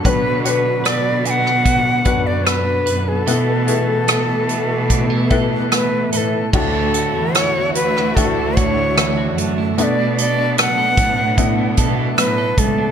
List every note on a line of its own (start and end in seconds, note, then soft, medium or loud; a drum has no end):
0.00 3.23 D3 medium
0.00 3.22 F#3 soft
0.00 1.24 D4 soft
0.00 0.13 F#4 soft
0.04 3.25 B2 medium
0.04 0.81 B2 medium
0.04 1.21 B2 medium
0.04 1.21 F#3 soft
0.04 6.49 B3 medium
0.04 0.43 D4 medium
0.04 0.43 F#4 medium
0.04 0.83 B4 medium
0.04 0.43 B4 medium
0.04 0.10 C#5 medium
0.04 kick medium
0.04 closed hi-hat medium
0.09 0.42 B4 medium
0.44 1.97 D4 medium
0.44 1.63 F#4 soft
0.44 1.97 F#4 soft
0.44 1.98 B4 medium
0.44 0.50 C#5 medium
0.44 closed hi-hat medium
0.49 0.87 B4 medium
0.84 2.02 B2 medium
0.84 2.04 B4 medium
0.84 1.27 D5 medium
0.84 cross-stick loud
0.84 closed hi-hat medium
1.24 2.44 D4 soft
1.24 1.31 G#5 medium
1.24 closed hi-hat medium
1.30 2.28 F#5 loud
1.46 cross-stick soft
1.65 3.35 F#4 medium
1.65 kick medium
1.65 closed hi-hat medium
2.05 2.83 F#2 medium
2.05 3.21 D4 medium
2.05 3.21 F#4 medium
2.05 2.86 B4 medium
2.05 3.21 B4 medium
2.05 kick medium
2.05 closed hi-hat medium
2.27 2.48 D5 medium
2.45 3.35 D4 medium
2.45 3.10 B4 medium
2.45 cross-stick medium
2.45 closed hi-hat medium
2.86 3.24 F#2 medium
2.86 3.27 B4 medium
2.86 closed hi-hat medium
3.08 5.42 A4 medium
3.26 6.53 B2 medium
3.26 4.04 B2 medium
3.26 4.45 B2 soft
3.26 6.50 E3 medium
3.26 6.50 A3 medium
3.26 4.45 B3 medium
3.26 3.66 E4 medium
3.26 4.07 A4 medium
3.26 3.66 A4 medium
3.26 3.66 B4 medium
3.26 closed hi-hat medium
3.67 4.89 E4 medium
3.67 5.22 E4 medium
3.67 3.74 G#4 soft
3.67 5.23 B4 medium
3.67 closed hi-hat medium
3.74 5.26 A4 soft
4.08 6.09 B2 medium
4.08 5.30 A4 medium
4.08 cross-stick loud
4.08 closed hi-hat medium
4.49 5.71 A3 soft
4.49 closed hi-hat medium
4.89 5.10 D4 medium
4.89 kick medium
4.89 closed hi-hat medium
5.10 6.61 E4 soft
5.30 6.47 E4 medium
5.30 6.12 A4 soft
5.30 6.48 A4 medium
5.30 6.48 B4 medium
5.30 kick medium
5.30 closed hi-hat medium
5.72 7.75 A3 soft
5.72 6.10 B4 medium
5.72 cross-stick medium
5.72 closed hi-hat medium
6.12 6.51 A2 medium
6.12 6.93 A4 medium
6.12 6.18 B4 medium
6.12 closed hi-hat medium
6.17 6.50 A4 medium
6.53 7.10 D2 medium
6.53 7.72 A2 soft
6.53 8.16 D3 medium
6.53 12.91 A3 medium
6.53 12.91 D4 medium
6.53 8.08 D4 medium
6.53 9.75 E4 medium
6.53 8.09 E4 medium
6.53 9.74 F#4 medium
6.53 8.09 F#4 medium
6.53 7.36 A4 medium
6.53 kick loud
6.53 crash medium
6.74 7.13 E4 medium
6.94 7.55 F#4 medium
6.94 closed hi-hat medium
7.14 7.72 E2 medium
7.14 7.95 E4 medium
7.34 8.96 E3 medium
7.34 7.74 C#5 medium
7.34 cross-stick loud
7.34 closed hi-hat medium
7.55 8.56 F#4 medium
7.74 8.13 D2 medium
7.74 9.37 A3 soft
7.74 8.17 B4 medium
7.74 closed hi-hat medium
7.96 8.35 E4 medium
7.96 cross-stick soft
8.15 9.38 D2 medium
8.15 9.78 D3 medium
8.15 9.70 D4 medium
8.15 9.70 E4 medium
8.15 9.70 F#4 medium
8.15 8.58 A4 medium
8.15 kick medium
8.15 closed hi-hat medium
8.37 8.76 E4 soft
8.57 9.17 F#4 medium
8.57 9.38 C#5 medium
8.57 kick medium
8.57 closed hi-hat medium
8.77 9.57 E4 medium
8.97 9.86 E3 medium
8.97 cross-stick medium
8.97 closed hi-hat medium
9.17 10.18 F#4 medium
9.38 9.76 F#2 medium
9.38 10.98 A3 medium
9.38 closed hi-hat medium
9.58 9.86 E4 medium
9.78 11.37 B2 medium
9.78 10.94 B2 medium
9.78 11.30 B3 medium
9.78 12.91 B3 medium
9.78 11.30 D4 medium
9.78 11.30 A4 medium
9.78 9.84 E5 medium
9.78 closed hi-hat medium
9.83 10.16 D5 medium
9.99 10.37 D4 medium
10.18 10.77 A4 medium
10.18 10.56 D5 medium
10.18 closed hi-hat medium
10.38 11.17 D4 medium
10.58 12.18 F#3 medium
10.58 11.75 F#5 loud
10.58 cross-stick loud
10.58 closed hi-hat medium
10.78 11.77 A4 medium
10.97 11.73 A2 medium
10.97 12.57 A3 medium
10.97 kick medium
10.97 closed hi-hat medium
11.18 11.57 D4 medium
11.37 12.91 B2 medium
11.37 12.90 B3 medium
11.37 12.90 D4 medium
11.37 12.90 E4 medium
11.37 kick medium
11.37 closed hi-hat medium
11.58 11.96 D4 soft
11.77 12.15 B2 medium
11.77 12.37 A4 medium
11.77 kick medium
11.77 closed hi-hat medium
11.98 12.77 D4 soft
12.18 12.55 A2 medium
12.18 12.91 F#3 medium
12.18 12.60 B4 medium
12.18 cross-stick medium
12.18 closed hi-hat medium
12.38 12.91 A4 medium
12.58 12.91 C#2 medium
12.58 12.91 A3 medium
12.58 12.91 A4 medium
12.58 kick medium
12.58 closed hi-hat medium
12.78 12.91 D4 medium